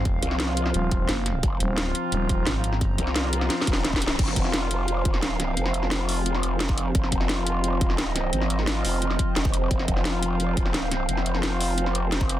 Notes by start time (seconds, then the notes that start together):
Already playing: G#1 F3 C4 C5 F5
0.05 kick, closed hi-hat
0.23 C2, closed hi-hat
0.31 F3 C4 F4, snare
0.40 snare, closed hi-hat
0.57 closed hi-hat
0.66 snare
0.74 D#1, closed hi-hat
0.91 kick, closed hi-hat
1.09 F#1, snare, closed hi-hat
1.26 snare, closed hi-hat
1.43 F1 A#5, kick, closed hi-hat
1.60 D#1, closed hi-hat
1.69 F3 C4 F4
1.78 snare, closed hi-hat
1.95 closed hi-hat
2.12 D#1, closed hi-hat
2.29 kick, closed hi-hat
2.47 G#1, snare, closed hi-hat
2.55 F3 C4 F4
2.64 closed hi-hat
2.73 snare
2.81 kick, closed hi-hat
2.98 C2, closed hi-hat
3.07 F3 C4 F4, snare
3.16 snare, closed hi-hat
3.33 closed hi-hat
3.41 snare
3.50 snare, closed hi-hat
3.62 snare
3.67 D#1, kick, closed hi-hat
3.73 snare
3.85 snare, closed hi-hat
3.93 kick, snare
4.02 closed hi-hat
4.08 snare
4.19 F1 F3 C4 C5 F5, kick, closed hi-hat, crash
4.28 snare
4.36 kick, closed hi-hat
4.45 F3 C4 F4, snare
4.54 snare, closed hi-hat
4.71 closed hi-hat
4.88 closed hi-hat
5.05 kick, closed hi-hat
5.14 snare
5.18 D#1
5.22 snare, closed hi-hat
5.40 C#1, snare, closed hi-hat
5.57 F1, closed hi-hat
5.66 snare
5.74 closed hi-hat
5.83 F3 C4 F4, snare
5.91 snare, closed hi-hat
6.09 open hi-hat
6.26 closed hi-hat
6.35 snare
6.43 closed hi-hat
6.60 snare, closed hi-hat
6.69 kick
6.78 closed hi-hat
6.95 F1 D#5, kick, closed hi-hat
7.03 snare
7.12 kick, closed hi-hat
7.21 F3 C4 F4, snare
7.29 snare, closed hi-hat
7.47 closed hi-hat
7.64 closed hi-hat
7.81 kick, closed hi-hat
7.90 snare
7.94 D#1
7.98 snare, closed hi-hat
8.16 C#1, snare, closed hi-hat
8.33 G#1, closed hi-hat
8.41 snare
8.50 closed hi-hat
8.59 F3 C4 F4, snare
8.67 snare, closed hi-hat
8.85 F1, open hi-hat
9.02 closed hi-hat
9.11 snare
9.19 kick, closed hi-hat
9.36 F1, snare, closed hi-hat
9.45 kick
9.54 closed hi-hat
9.71 F1 F5, kick, closed hi-hat
9.79 snare
9.88 kick, closed hi-hat
9.97 F3 C4 F4, snare
10.05 snare, closed hi-hat
10.23 closed hi-hat
10.40 closed hi-hat
10.57 kick, closed hi-hat
10.66 snare
10.70 D#1
10.74 snare, closed hi-hat
10.92 C#1, snare, closed hi-hat
11.09 F1, closed hi-hat
11.17 snare
11.26 closed hi-hat
11.35 F3 C4 F4, snare
11.43 snare, closed hi-hat
11.61 open hi-hat
11.78 closed hi-hat
11.86 snare
11.95 closed hi-hat
12.12 snare, closed hi-hat
12.21 kick
12.29 closed hi-hat